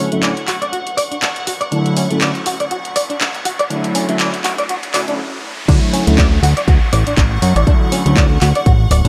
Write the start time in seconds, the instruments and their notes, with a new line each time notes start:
Already playing: violin section F#5 C#6, riser
0.11 analog polysynth D3 F#3 A3 C#4 E4, clean electric guitar A3, closed hi-hat
0.23 clean electric guitar D5, clap, closed hi-hat
0.37 closed hi-hat
0.48 clean electric guitar F#4, clap, open hi-hat
0.62 clean electric guitar D5, closed hi-hat
0.72 clean electric guitar F#4, closed hi-hat
0.87 closed hi-hat
0.97 clean electric guitar D5, open hi-hat
1.11 clean electric guitar D4, closed hi-hat
1.22 clean electric guitar D4, clap, closed hi-hat
1.36 closed hi-hat
1.47 clean electric guitar F#4, open hi-hat
1.61 clean electric guitar D5, closed hi-hat
1.71 analog polysynth D3 F#3 A3 E4, clean electric guitar D4, closed hi-hat
1.86 closed hi-hat
1.97 clean electric guitar C#4, open hi-hat
2.10 analog polysynth D3 F#3 A3 C#4 E4, clean electric guitar A3, closed hi-hat
2.21 clean electric guitar D5, clap, closed hi-hat
2.35 closed hi-hat
2.46 clean electric guitar F#4, open hi-hat
2.60 clean electric guitar D5, closed hi-hat
2.71 clean electric guitar F#4, closed hi-hat
2.85 closed hi-hat
2.96 clean electric guitar D5, open hi-hat
3.10 clean electric guitar D4, closed hi-hat
3.21 clean electric guitar D4, clap, closed hi-hat
3.34 closed hi-hat
3.45 clean electric guitar F#4, open hi-hat
3.59 clean electric guitar D5, closed hi-hat
3.70 analog polysynth D3 F#3 A3 E4, clean electric guitar D4, closed hi-hat
3.84 closed hi-hat
3.95 clean electric guitar C#4, open hi-hat
4.08 analog polysynth D3 F#3 A3 C#4 E4, clean electric guitar A3, closed hi-hat
4.20 clean electric guitar D5, clap, closed hi-hat
4.34 closed hi-hat
4.44 clean electric guitar F#4, clap, open hi-hat
4.58 clean electric guitar D5, closed hi-hat
4.69 clean electric guitar F#4, closed hi-hat
4.83 closed hi-hat
4.93 analog polysynth D3 F#3 A3 C#4 E4, clean electric guitar D5, clap, open hi-hat
5.08 analog polysynth D3 F#3 A3 C#4 E4, clean electric guitar D4, closed hi-hat
5.68 analog synth bass D2, analog polysynth D3 F#3 A3 E4 C#5, clean electric guitar D4, violin section F#5 C#6, kick, closed hi-hat, crash, downlifter
5.93 clean electric guitar C#4, open hi-hat
6.07 analog synth bass D2, analog polysynth D3 F#3 A3 C#4 E4, clean electric guitar A3, closed hi-hat
6.18 clean electric guitar D5, kick, clap, closed hi-hat
6.43 analog synth bass D2, clean electric guitar F#4, open hi-hat
6.57 clean electric guitar D5, closed hi-hat
6.68 analog synth bass D2, clean electric guitar F#4, kick, closed hi-hat
6.93 analog synth bass A1, clean electric guitar D5, open hi-hat
7.07 analog synth bass A1, clean electric guitar D4, closed hi-hat
7.17 analog synth bass A1, clean electric guitar D4, kick, clap, closed hi-hat
7.42 analog synth bass F#2, clean electric guitar F#4, open hi-hat
7.56 analog synth bass A1, clean electric guitar D5, closed hi-hat
7.67 analog polysynth D3 F#3 A3 E4, clean electric guitar D4, kick, closed hi-hat
7.92 clean electric guitar C#4, open hi-hat
8.05 analog synth bass D2, analog polysynth D3 F#3 A3 C#4 E4, clean electric guitar A3, closed hi-hat
8.16 clean electric guitar D5, kick, clap, closed hi-hat
8.41 analog synth bass D2, clean electric guitar F#4, clap, open hi-hat
8.55 clean electric guitar D5, closed hi-hat
8.66 analog synth bass A1, clean electric guitar F#4, kick, closed hi-hat
8.91 analog synth bass D1, clean electric guitar D5, open hi-hat
9.05 analog synth bass A1, clean electric guitar D4, closed hi-hat